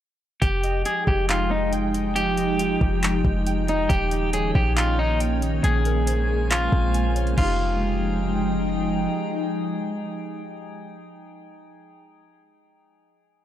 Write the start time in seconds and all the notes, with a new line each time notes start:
0.42 F1 F3 G#3 D#4 G4 G5, kick, closed hi-hat
0.63 D#5, closed hi-hat
0.85 G#4, closed hi-hat
1.07 F1 G4, kick
1.29 D#4 F4, clap, closed hi-hat
1.51 G#3 D#4
1.72 G5, closed hi-hat
1.94 D#5, closed hi-hat
2.16 G4 G5, closed hi-hat
2.37 D#5, closed hi-hat
2.59 F4, closed hi-hat
2.81 F1 G4, kick
3.03 D#4, clap, closed hi-hat
3.25 F1 G#3, kick
3.46 G5, closed hi-hat
3.68 D#4 D#5, closed hi-hat
3.89 D#1 D#3 A#3 C#4 G4 C#5 G5, kick, closed hi-hat
4.11 D#5, closed hi-hat
4.33 G#4 C#5, closed hi-hat
4.55 A#1 G4, kick
4.77 D#4 F4, clap, closed hi-hat
4.99 C#4 D#4
5.20 G5, closed hi-hat
5.42 D#5, closed hi-hat
5.64 A#1 C#3 G#3 C#4 G#4 C5 G#5, closed hi-hat
5.85 A#4, closed hi-hat
6.07 C5, closed hi-hat
6.28 G#4
6.51 C#4 F4, clap, closed hi-hat
6.72 A#1 C4, kick
6.94 G#5, closed hi-hat
7.15 C#5, closed hi-hat
7.27 closed hi-hat
7.32 G#3
7.38 F1 F3 G#3 D#4 F4 G#4 G5, kick, crash
7.44 G4